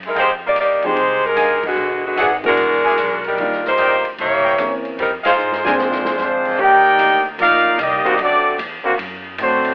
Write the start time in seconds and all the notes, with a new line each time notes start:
Already playing: F#2
0.03 G#3 D#4 E4 A#4, ride
0.15 F2 G#4 D#5 F5 G5, ride
0.19 G#3 D#4 G4 C5
0.46 A#3 D#4 G4 D5
0.56 D#2, hi-hat pedal, ride
0.60 A#3 D#4 G4 D5
0.82 F3 G#3 C4 D#4 G4 C5, muted upright bass stroke, ride
0.86 G4
0.95 C2, ride
1.26 G#3 D#4 G4 A#4
1.36 G1 G#4 D#5 F5 G#5, hi-hat pedal, ride
1.63 D3 G#3 B3 F#4, muted upright bass stroke, kick, crash
1.76 E1
2.06 D3 G#3 B3 F#4
2.16 G#1 F#3 D4 G#4 D5 E5 F#5, hi-hat pedal, ride
2.20 B3
2.43 E3 G#3 B3 D4 F#4 A#4, ride
2.57 F#1, ride
2.84 G#4 D5 E5 G#5
2.97 B1, hi-hat pedal, ride
3.24 G3 D4 D#4 A#4, ride
3.37 D#2 D#3 G3 A#3 F4 D5, ride
3.52 snare
3.65 A#3 D#4 G4 C5, snare
3.78 D2 A#4 D5 D#5 G5, hi-hat pedal, ride
4.05 ride
4.18 C2 A#3 E4 G4 C#5, ride
4.44 A#4 C5 C#5 G5
4.58 E2 E3 A#3 C4 C#4 A#4, hi-hat pedal, ride
4.85 ride
4.98 F2 G3 C4 D#4 A#4, ride
5.24 G#3 D#4 F4 G#4 C5 D#5 F5, muted upright bass stroke, snare, ride
5.38 G#2, hi-hat pedal
5.52 snare
5.64 F3 G#3 A#3 C4 D4 F4 G#4 A#4 C5 D5 G#5, snare
5.78 A#2, snare
5.91 G#2, snare
6.04 F2, snare
6.18 F2 F3 G#3 C4 D4 F4 C5, snare, hi-hat pedal
6.45 kick, crash
6.57 D#2 D#3 A#3 D4 D#4 G4 A#4 D5 G5
6.98 D2, hi-hat pedal, ride
7.38 A#1 A#3 D#4 F4 A#4 D5 F5, ride
7.78 C2 G3 A#3 D#4 D#5, hi-hat pedal, ride
7.82 A#3 G4 D5
8.05 D3 A#3 C4 F#4, muted upright bass stroke, ride
8.17 D2 F#3 A3 D4, ride
8.22 C4 F#4 A4 D5
8.58 E2, hi-hat pedal, ride
8.84 D3 A#3 C4 F#4, muted upright bass stroke
8.98 F#2, ride
9.38 A2 F#3 A3 C4 D4 F#4 C5, hi-hat pedal, ride
9.65 ride